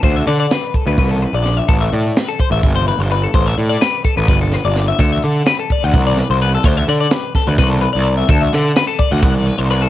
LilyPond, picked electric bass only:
\new Staff \with { instrumentName = "Picked electric bass" } { \clef bass \time 7/8 \key d \mixolydian \tempo 4 = 127 d,8 d8 r8. d,16 c,8. ais,,8. | a,,8 a,8 r8. a,,16 g,,8. g,,8. | a,,8 a,8 r8. a,,16 g,,8. g,,8. | d,8 d8 r8. d,16 c,8. c,8. |
d,8 d8 r8. d,16 c,8. c,8. | d,8 d8 r8. d,16 c,8. c,8. | }